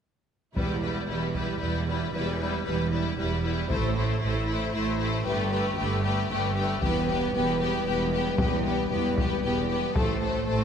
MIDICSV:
0, 0, Header, 1, 8, 480
1, 0, Start_track
1, 0, Key_signature, 1, "minor"
1, 0, Tempo, 521739
1, 520, Time_signature, 3, 2, 24, 8
1, 9790, End_track
2, 0, Start_track
2, 0, Title_t, "Violin section"
2, 0, Program_c, 0, 48
2, 522, Note_on_c, 0, 71, 45
2, 738, Note_off_c, 0, 71, 0
2, 749, Note_on_c, 0, 71, 33
2, 978, Note_off_c, 0, 71, 0
2, 989, Note_on_c, 0, 71, 40
2, 1224, Note_off_c, 0, 71, 0
2, 1235, Note_on_c, 0, 71, 41
2, 1467, Note_off_c, 0, 71, 0
2, 1478, Note_on_c, 0, 71, 43
2, 1701, Note_off_c, 0, 71, 0
2, 1712, Note_on_c, 0, 71, 36
2, 1947, Note_off_c, 0, 71, 0
2, 1958, Note_on_c, 0, 71, 51
2, 2180, Note_off_c, 0, 71, 0
2, 2191, Note_on_c, 0, 71, 39
2, 2430, Note_off_c, 0, 71, 0
2, 2440, Note_on_c, 0, 71, 47
2, 2675, Note_off_c, 0, 71, 0
2, 2685, Note_on_c, 0, 71, 39
2, 2917, Note_off_c, 0, 71, 0
2, 2931, Note_on_c, 0, 71, 42
2, 3152, Note_off_c, 0, 71, 0
2, 3163, Note_on_c, 0, 71, 41
2, 3396, Note_off_c, 0, 71, 0
2, 3413, Note_on_c, 0, 72, 53
2, 3639, Note_off_c, 0, 72, 0
2, 3650, Note_on_c, 0, 72, 45
2, 3880, Note_off_c, 0, 72, 0
2, 3904, Note_on_c, 0, 72, 45
2, 4127, Note_off_c, 0, 72, 0
2, 4149, Note_on_c, 0, 72, 48
2, 4359, Note_off_c, 0, 72, 0
2, 4370, Note_on_c, 0, 72, 50
2, 4600, Note_off_c, 0, 72, 0
2, 4617, Note_on_c, 0, 72, 47
2, 4843, Note_off_c, 0, 72, 0
2, 4851, Note_on_c, 0, 71, 56
2, 5076, Note_off_c, 0, 71, 0
2, 5087, Note_on_c, 0, 71, 49
2, 5318, Note_off_c, 0, 71, 0
2, 5332, Note_on_c, 0, 71, 51
2, 5554, Note_off_c, 0, 71, 0
2, 5565, Note_on_c, 0, 71, 50
2, 5798, Note_off_c, 0, 71, 0
2, 5813, Note_on_c, 0, 71, 51
2, 6031, Note_off_c, 0, 71, 0
2, 6042, Note_on_c, 0, 71, 47
2, 6276, Note_off_c, 0, 71, 0
2, 6290, Note_on_c, 0, 71, 59
2, 6520, Note_off_c, 0, 71, 0
2, 6530, Note_on_c, 0, 71, 48
2, 6748, Note_off_c, 0, 71, 0
2, 6760, Note_on_c, 0, 71, 54
2, 6992, Note_off_c, 0, 71, 0
2, 7003, Note_on_c, 0, 71, 50
2, 7223, Note_off_c, 0, 71, 0
2, 7235, Note_on_c, 0, 71, 51
2, 7472, Note_off_c, 0, 71, 0
2, 7489, Note_on_c, 0, 71, 44
2, 7720, Note_off_c, 0, 71, 0
2, 7729, Note_on_c, 0, 71, 55
2, 7954, Note_off_c, 0, 71, 0
2, 7965, Note_on_c, 0, 71, 45
2, 8197, Note_off_c, 0, 71, 0
2, 8211, Note_on_c, 0, 71, 54
2, 8441, Note_off_c, 0, 71, 0
2, 8450, Note_on_c, 0, 71, 47
2, 8680, Note_off_c, 0, 71, 0
2, 8692, Note_on_c, 0, 71, 47
2, 8919, Note_off_c, 0, 71, 0
2, 8930, Note_on_c, 0, 71, 43
2, 9160, Note_off_c, 0, 71, 0
2, 9180, Note_on_c, 0, 72, 50
2, 9397, Note_off_c, 0, 72, 0
2, 9408, Note_on_c, 0, 72, 41
2, 9636, Note_off_c, 0, 72, 0
2, 9647, Note_on_c, 0, 72, 46
2, 9790, Note_off_c, 0, 72, 0
2, 9790, End_track
3, 0, Start_track
3, 0, Title_t, "Violin section"
3, 0, Program_c, 1, 48
3, 514, Note_on_c, 1, 64, 42
3, 752, Note_off_c, 1, 64, 0
3, 771, Note_on_c, 1, 64, 38
3, 989, Note_off_c, 1, 64, 0
3, 1000, Note_on_c, 1, 64, 38
3, 1235, Note_off_c, 1, 64, 0
3, 1249, Note_on_c, 1, 64, 41
3, 1472, Note_off_c, 1, 64, 0
3, 1483, Note_on_c, 1, 64, 44
3, 1716, Note_off_c, 1, 64, 0
3, 1737, Note_on_c, 1, 64, 43
3, 1963, Note_off_c, 1, 64, 0
3, 1977, Note_on_c, 1, 64, 43
3, 2203, Note_off_c, 1, 64, 0
3, 2216, Note_on_c, 1, 64, 37
3, 2443, Note_off_c, 1, 64, 0
3, 2458, Note_on_c, 1, 64, 41
3, 2684, Note_off_c, 1, 64, 0
3, 2698, Note_on_c, 1, 64, 47
3, 2924, Note_off_c, 1, 64, 0
3, 2937, Note_on_c, 1, 64, 46
3, 3151, Note_off_c, 1, 64, 0
3, 3162, Note_on_c, 1, 64, 45
3, 3387, Note_off_c, 1, 64, 0
3, 3398, Note_on_c, 1, 64, 47
3, 3623, Note_off_c, 1, 64, 0
3, 3634, Note_on_c, 1, 64, 42
3, 3857, Note_off_c, 1, 64, 0
3, 3868, Note_on_c, 1, 64, 46
3, 4095, Note_off_c, 1, 64, 0
3, 4107, Note_on_c, 1, 64, 51
3, 4335, Note_off_c, 1, 64, 0
3, 4346, Note_on_c, 1, 64, 48
3, 4571, Note_off_c, 1, 64, 0
3, 4582, Note_on_c, 1, 64, 47
3, 4826, Note_off_c, 1, 64, 0
3, 4831, Note_on_c, 1, 67, 52
3, 5049, Note_off_c, 1, 67, 0
3, 5060, Note_on_c, 1, 67, 48
3, 5290, Note_off_c, 1, 67, 0
3, 5301, Note_on_c, 1, 67, 46
3, 5533, Note_off_c, 1, 67, 0
3, 5544, Note_on_c, 1, 67, 53
3, 5770, Note_off_c, 1, 67, 0
3, 5781, Note_on_c, 1, 67, 52
3, 6018, Note_off_c, 1, 67, 0
3, 6029, Note_on_c, 1, 67, 48
3, 6250, Note_off_c, 1, 67, 0
3, 6261, Note_on_c, 1, 67, 51
3, 6489, Note_off_c, 1, 67, 0
3, 6500, Note_on_c, 1, 67, 46
3, 6745, Note_off_c, 1, 67, 0
3, 6756, Note_on_c, 1, 67, 49
3, 6987, Note_off_c, 1, 67, 0
3, 6998, Note_on_c, 1, 67, 55
3, 7230, Note_off_c, 1, 67, 0
3, 7241, Note_on_c, 1, 67, 50
3, 7475, Note_off_c, 1, 67, 0
3, 7485, Note_on_c, 1, 67, 53
3, 7703, Note_off_c, 1, 67, 0
3, 7714, Note_on_c, 1, 67, 49
3, 7938, Note_off_c, 1, 67, 0
3, 7949, Note_on_c, 1, 67, 50
3, 8169, Note_off_c, 1, 67, 0
3, 8180, Note_on_c, 1, 67, 42
3, 8417, Note_off_c, 1, 67, 0
3, 8428, Note_on_c, 1, 67, 51
3, 8660, Note_off_c, 1, 67, 0
3, 8671, Note_on_c, 1, 67, 50
3, 8902, Note_off_c, 1, 67, 0
3, 8913, Note_on_c, 1, 67, 48
3, 9151, Note_off_c, 1, 67, 0
3, 9152, Note_on_c, 1, 69, 44
3, 9388, Note_off_c, 1, 69, 0
3, 9399, Note_on_c, 1, 69, 41
3, 9615, Note_off_c, 1, 69, 0
3, 9626, Note_on_c, 1, 69, 39
3, 9790, Note_off_c, 1, 69, 0
3, 9790, End_track
4, 0, Start_track
4, 0, Title_t, "French horn section"
4, 0, Program_c, 2, 60
4, 531, Note_on_c, 2, 55, 43
4, 533, Note_on_c, 2, 71, 39
4, 695, Note_off_c, 2, 55, 0
4, 695, Note_off_c, 2, 71, 0
4, 1982, Note_on_c, 2, 71, 40
4, 1986, Note_on_c, 2, 55, 46
4, 2141, Note_off_c, 2, 71, 0
4, 2144, Note_off_c, 2, 55, 0
4, 3388, Note_on_c, 2, 72, 50
4, 3396, Note_on_c, 2, 57, 44
4, 3559, Note_off_c, 2, 72, 0
4, 3564, Note_off_c, 2, 57, 0
4, 4836, Note_on_c, 2, 71, 53
4, 4849, Note_on_c, 2, 57, 50
4, 5005, Note_off_c, 2, 71, 0
4, 5013, Note_off_c, 2, 57, 0
4, 6273, Note_on_c, 2, 71, 53
4, 6282, Note_on_c, 2, 55, 55
4, 9119, Note_off_c, 2, 71, 0
4, 9124, Note_off_c, 2, 55, 0
4, 9160, Note_on_c, 2, 72, 47
4, 9164, Note_on_c, 2, 57, 53
4, 9790, Note_off_c, 2, 57, 0
4, 9790, Note_off_c, 2, 72, 0
4, 9790, End_track
5, 0, Start_track
5, 0, Title_t, "Viola section"
5, 0, Program_c, 3, 48
5, 518, Note_on_c, 3, 55, 43
5, 754, Note_off_c, 3, 55, 0
5, 767, Note_on_c, 3, 55, 38
5, 999, Note_off_c, 3, 55, 0
5, 1008, Note_on_c, 3, 55, 40
5, 1229, Note_off_c, 3, 55, 0
5, 1240, Note_on_c, 3, 55, 39
5, 1467, Note_off_c, 3, 55, 0
5, 1478, Note_on_c, 3, 55, 37
5, 1714, Note_off_c, 3, 55, 0
5, 1734, Note_on_c, 3, 55, 35
5, 1962, Note_off_c, 3, 55, 0
5, 1973, Note_on_c, 3, 55, 48
5, 2202, Note_off_c, 3, 55, 0
5, 2213, Note_on_c, 3, 55, 44
5, 2437, Note_off_c, 3, 55, 0
5, 2448, Note_on_c, 3, 55, 39
5, 2676, Note_off_c, 3, 55, 0
5, 2687, Note_on_c, 3, 55, 37
5, 2909, Note_off_c, 3, 55, 0
5, 2920, Note_on_c, 3, 55, 36
5, 3153, Note_off_c, 3, 55, 0
5, 3164, Note_on_c, 3, 55, 42
5, 3397, Note_off_c, 3, 55, 0
5, 3410, Note_on_c, 3, 57, 49
5, 3633, Note_off_c, 3, 57, 0
5, 3644, Note_on_c, 3, 57, 46
5, 3877, Note_off_c, 3, 57, 0
5, 3887, Note_on_c, 3, 57, 47
5, 4119, Note_off_c, 3, 57, 0
5, 4131, Note_on_c, 3, 57, 45
5, 4356, Note_off_c, 3, 57, 0
5, 4367, Note_on_c, 3, 57, 43
5, 4593, Note_off_c, 3, 57, 0
5, 4604, Note_on_c, 3, 57, 44
5, 4837, Note_off_c, 3, 57, 0
5, 4849, Note_on_c, 3, 57, 55
5, 5077, Note_off_c, 3, 57, 0
5, 5088, Note_on_c, 3, 57, 51
5, 5319, Note_off_c, 3, 57, 0
5, 5332, Note_on_c, 3, 57, 50
5, 5555, Note_off_c, 3, 57, 0
5, 5566, Note_on_c, 3, 57, 49
5, 5795, Note_off_c, 3, 57, 0
5, 5806, Note_on_c, 3, 57, 51
5, 6038, Note_off_c, 3, 57, 0
5, 6054, Note_on_c, 3, 57, 51
5, 6282, Note_off_c, 3, 57, 0
5, 6297, Note_on_c, 3, 59, 59
5, 6524, Note_off_c, 3, 59, 0
5, 6537, Note_on_c, 3, 59, 51
5, 6764, Note_off_c, 3, 59, 0
5, 6775, Note_on_c, 3, 59, 46
5, 6996, Note_off_c, 3, 59, 0
5, 7007, Note_on_c, 3, 59, 47
5, 7238, Note_off_c, 3, 59, 0
5, 7251, Note_on_c, 3, 59, 46
5, 7478, Note_off_c, 3, 59, 0
5, 7489, Note_on_c, 3, 59, 45
5, 7719, Note_off_c, 3, 59, 0
5, 7729, Note_on_c, 3, 59, 59
5, 7960, Note_off_c, 3, 59, 0
5, 7969, Note_on_c, 3, 59, 49
5, 8198, Note_off_c, 3, 59, 0
5, 8209, Note_on_c, 3, 59, 49
5, 8435, Note_off_c, 3, 59, 0
5, 8446, Note_on_c, 3, 59, 49
5, 8678, Note_off_c, 3, 59, 0
5, 8689, Note_on_c, 3, 59, 40
5, 8909, Note_off_c, 3, 59, 0
5, 8920, Note_on_c, 3, 59, 43
5, 9155, Note_off_c, 3, 59, 0
5, 9171, Note_on_c, 3, 57, 50
5, 9400, Note_off_c, 3, 57, 0
5, 9410, Note_on_c, 3, 57, 44
5, 9629, Note_off_c, 3, 57, 0
5, 9640, Note_on_c, 3, 57, 46
5, 9790, Note_off_c, 3, 57, 0
5, 9790, End_track
6, 0, Start_track
6, 0, Title_t, "Cello section"
6, 0, Program_c, 4, 48
6, 518, Note_on_c, 4, 40, 54
6, 942, Note_off_c, 4, 40, 0
6, 1001, Note_on_c, 4, 40, 45
6, 1423, Note_off_c, 4, 40, 0
6, 1480, Note_on_c, 4, 40, 47
6, 1903, Note_off_c, 4, 40, 0
6, 1961, Note_on_c, 4, 40, 57
6, 2384, Note_off_c, 4, 40, 0
6, 2447, Note_on_c, 4, 40, 44
6, 2866, Note_off_c, 4, 40, 0
6, 2930, Note_on_c, 4, 40, 48
6, 3348, Note_off_c, 4, 40, 0
6, 3409, Note_on_c, 4, 45, 60
6, 3828, Note_off_c, 4, 45, 0
6, 3893, Note_on_c, 4, 45, 48
6, 4310, Note_off_c, 4, 45, 0
6, 4363, Note_on_c, 4, 45, 56
6, 4784, Note_off_c, 4, 45, 0
6, 4845, Note_on_c, 4, 43, 58
6, 5266, Note_off_c, 4, 43, 0
6, 5323, Note_on_c, 4, 43, 58
6, 5745, Note_off_c, 4, 43, 0
6, 5805, Note_on_c, 4, 43, 62
6, 6226, Note_off_c, 4, 43, 0
6, 6281, Note_on_c, 4, 40, 62
6, 6703, Note_off_c, 4, 40, 0
6, 6763, Note_on_c, 4, 40, 59
6, 7185, Note_off_c, 4, 40, 0
6, 7240, Note_on_c, 4, 40, 55
6, 7663, Note_off_c, 4, 40, 0
6, 7722, Note_on_c, 4, 40, 64
6, 8144, Note_off_c, 4, 40, 0
6, 8199, Note_on_c, 4, 40, 53
6, 8622, Note_off_c, 4, 40, 0
6, 8681, Note_on_c, 4, 40, 55
6, 9103, Note_off_c, 4, 40, 0
6, 9153, Note_on_c, 4, 45, 53
6, 9579, Note_off_c, 4, 45, 0
6, 9635, Note_on_c, 4, 45, 51
6, 9790, Note_off_c, 4, 45, 0
6, 9790, End_track
7, 0, Start_track
7, 0, Title_t, "Double bass section"
7, 0, Program_c, 5, 48
7, 511, Note_on_c, 5, 28, 47
7, 938, Note_off_c, 5, 28, 0
7, 997, Note_on_c, 5, 28, 45
7, 1421, Note_off_c, 5, 28, 0
7, 1480, Note_on_c, 5, 28, 46
7, 1903, Note_off_c, 5, 28, 0
7, 1959, Note_on_c, 5, 28, 59
7, 2383, Note_off_c, 5, 28, 0
7, 2449, Note_on_c, 5, 28, 51
7, 2868, Note_off_c, 5, 28, 0
7, 2923, Note_on_c, 5, 28, 50
7, 3345, Note_off_c, 5, 28, 0
7, 3411, Note_on_c, 5, 33, 60
7, 3829, Note_off_c, 5, 33, 0
7, 3892, Note_on_c, 5, 33, 54
7, 4309, Note_off_c, 5, 33, 0
7, 4373, Note_on_c, 5, 33, 54
7, 4790, Note_off_c, 5, 33, 0
7, 4841, Note_on_c, 5, 31, 66
7, 5264, Note_off_c, 5, 31, 0
7, 5323, Note_on_c, 5, 31, 60
7, 5744, Note_off_c, 5, 31, 0
7, 5802, Note_on_c, 5, 31, 54
7, 6224, Note_off_c, 5, 31, 0
7, 6277, Note_on_c, 5, 28, 62
7, 6701, Note_off_c, 5, 28, 0
7, 6767, Note_on_c, 5, 28, 59
7, 7187, Note_off_c, 5, 28, 0
7, 7239, Note_on_c, 5, 28, 59
7, 7662, Note_off_c, 5, 28, 0
7, 7722, Note_on_c, 5, 28, 66
7, 8144, Note_off_c, 5, 28, 0
7, 8197, Note_on_c, 5, 28, 62
7, 8622, Note_off_c, 5, 28, 0
7, 8681, Note_on_c, 5, 28, 52
7, 9103, Note_off_c, 5, 28, 0
7, 9153, Note_on_c, 5, 33, 58
7, 9580, Note_off_c, 5, 33, 0
7, 9632, Note_on_c, 5, 33, 53
7, 9790, Note_off_c, 5, 33, 0
7, 9790, End_track
8, 0, Start_track
8, 0, Title_t, "Taiko and cinematic ensemble drums"
8, 519, Note_on_c, 9, 41, 55
8, 611, Note_off_c, 9, 41, 0
8, 1238, Note_on_c, 9, 41, 34
8, 1330, Note_off_c, 9, 41, 0
8, 3404, Note_on_c, 9, 41, 55
8, 3496, Note_off_c, 9, 41, 0
8, 6273, Note_on_c, 9, 41, 62
8, 6365, Note_off_c, 9, 41, 0
8, 7713, Note_on_c, 9, 41, 90
8, 7805, Note_off_c, 9, 41, 0
8, 8443, Note_on_c, 9, 41, 71
8, 8535, Note_off_c, 9, 41, 0
8, 9159, Note_on_c, 9, 41, 80
8, 9251, Note_off_c, 9, 41, 0
8, 9790, End_track
0, 0, End_of_file